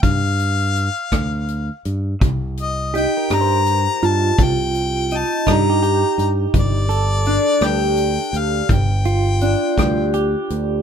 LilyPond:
<<
  \new Staff \with { instrumentName = "Harmonica" } { \time 6/8 \key g \minor \tempo 4. = 55 f''2~ f''8 r8 | r8 ees''8 g''8 bes''4 a''8 | g''4 a''8 bes''4 r8 | d''4. g''4 f''8 |
g''2 r4 | }
  \new Staff \with { instrumentName = "Clean electric guitar" } { \time 6/8 \key g \minor r2. | r4 g'16 bes'16 c''4 f'8~ | f'4. ees'16 g'16 g'4~ | g'8 a'2~ a'8 |
r8 f'4. g'4 | }
  \new Staff \with { instrumentName = "Clean electric guitar" } { \time 6/8 \key g \minor << { r2. | r4 ees'8 g'4. | r4 ees'8 g'4. | r4 d'8 g'4. |
r4 d'8 g'4. | } \\ { r2. | c4 r8 g4 r8 | c4 r8 g4 r8 | g,4 r8 g4 r8 |
g,4 r8 g4 r8 | } >> }
  \new Staff \with { instrumentName = "Fingered electric bass" } { \clef bass \time 6/8 \key g \minor g,4. d,4 g,8 | c,4. g,4 g,8 | c,4. g,4 g,8 | g,,4. d,4 d,8 |
g,,4. d,4 d,8 | }
  \new DrumStaff \with { instrumentName = "Drums" } \drummode { \time 6/8 <hh bd>8 hh8 hh8 <hh bd ss>8 hh8 hh8 | <hh bd>8 hh8 hh8 <hh ss>8 hh8 hh8 | <hh bd>8 hh8 hh8 <hh bd ss>8 hh8 hh8 | <hh bd>8 hh8 hh8 <hh ss>8 hh8 hh8 |
<hh bd>8 hh8 hh8 <hh bd ss>8 hh8 hh8 | }
>>